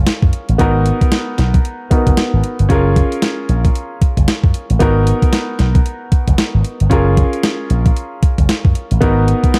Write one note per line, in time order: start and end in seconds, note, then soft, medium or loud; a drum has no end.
0.00 0.55 C#4 medium
0.00 0.55 F4 medium
0.00 0.56 G#4 medium
0.00 0.56 A#4 medium
0.07 snare loud
0.07 closed hi-hat medium
0.22 0.30 F#2 medium
0.22 kick medium
0.33 closed hi-hat medium
0.49 0.57 A1 medium
0.49 closed hi-hat soft
0.58 0.90 G#1 loud
0.58 1.88 B3 medium
0.58 1.88 D#4 medium
0.58 1.89 F#4 medium
0.58 1.89 A#4 medium
0.58 kick loud
0.58 closed hi-hat medium
0.86 closed hi-hat medium
1.01 kick loud
1.01 closed hi-hat medium
1.12 snare loud
1.12 closed hi-hat medium
1.38 1.58 B1 medium
1.38 snare medium
1.38 closed hi-hat medium
1.54 kick medium
1.54 closed hi-hat soft
1.65 closed hi-hat medium
1.91 2.70 B3 medium
1.91 2.70 D#4 medium
1.91 2.70 F#4 medium
1.91 2.70 A#4 medium
1.91 muted slap bass stroke soft
1.91 kick medium
1.91 closed hi-hat medium
2.07 2.15 F#1 medium
2.07 kick medium
2.07 closed hi-hat medium
2.17 snare loud
2.17 closed hi-hat medium
2.33 2.41 G#1 medium
2.44 closed hi-hat medium
2.59 2.67 G1 medium
2.59 closed hi-hat soft
2.69 3.01 F#1 loud
2.69 4.76 C#4 medium
2.69 4.76 F4 medium
2.69 4.77 G#4 medium
2.69 4.77 A#4 medium
2.69 kick loud
2.69 closed hi-hat medium
2.96 kick loud
2.96 closed hi-hat medium
3.12 closed hi-hat medium
3.22 snare loud
3.22 closed hi-hat medium
3.49 3.68 A#1 medium
3.49 closed hi-hat medium
3.65 kick medium
3.65 closed hi-hat medium
3.75 closed hi-hat medium
4.02 muted slap bass stroke soft
4.02 kick medium
4.02 closed hi-hat medium
4.17 4.25 F#1 medium
4.17 kick medium
4.17 closed hi-hat medium
4.28 snare loud
4.28 closed hi-hat medium
4.44 4.51 F#2 medium
4.44 kick medium
4.54 closed hi-hat medium
4.70 4.78 A1 medium
4.70 closed hi-hat soft
4.79 5.11 G#1 loud
4.79 6.86 B3 medium
4.79 6.87 D#4 medium
4.79 6.87 F#4 medium
4.79 6.88 A#4 medium
4.79 kick loud
4.79 closed hi-hat medium
5.07 closed hi-hat medium
5.22 kick loud
5.22 closed hi-hat medium
5.33 snare loud
5.33 closed hi-hat medium
5.59 5.79 B1 medium
5.59 snare medium
5.59 closed hi-hat medium
5.75 kick loud
5.75 closed hi-hat soft
5.86 closed hi-hat medium
6.12 muted slap bass stroke soft
6.12 kick medium
6.12 closed hi-hat medium
6.28 6.36 F#1 medium
6.28 kick medium
6.28 closed hi-hat medium
6.38 snare loud
6.38 closed hi-hat medium
6.54 6.62 G#1 medium
6.65 closed hi-hat medium
6.80 6.88 G1 medium
6.80 closed hi-hat soft
6.90 8.97 C#4 medium
6.90 8.97 F4 medium
6.90 8.98 G#4 medium
6.90 8.98 A#4 medium
6.90 kick loud
6.90 closed hi-hat medium
7.17 kick loud
7.17 closed hi-hat medium
7.33 closed hi-hat medium
7.43 snare loud
7.43 closed hi-hat medium
7.70 7.89 A#1 medium
7.70 closed hi-hat medium
7.86 kick loud
7.86 closed hi-hat soft
7.97 closed hi-hat medium
8.23 muted slap bass stroke soft
8.23 kick medium
8.23 closed hi-hat medium
8.38 8.46 F#1 medium
8.38 kick medium
8.38 closed hi-hat medium
8.49 snare loud
8.49 closed hi-hat medium
8.65 8.73 F#2 medium
8.65 kick medium
8.75 closed hi-hat medium
8.91 8.99 A1 medium
8.91 closed hi-hat soft
9.01 9.32 G#1 loud
9.01 9.59 B3 medium
9.01 9.59 D#4 medium
9.01 9.59 F#4 medium
9.01 9.59 A#4 medium
9.01 kick loud
9.01 closed hi-hat medium
9.28 closed hi-hat medium
9.44 kick medium
9.44 closed hi-hat medium
9.54 snare loud
9.54 closed hi-hat medium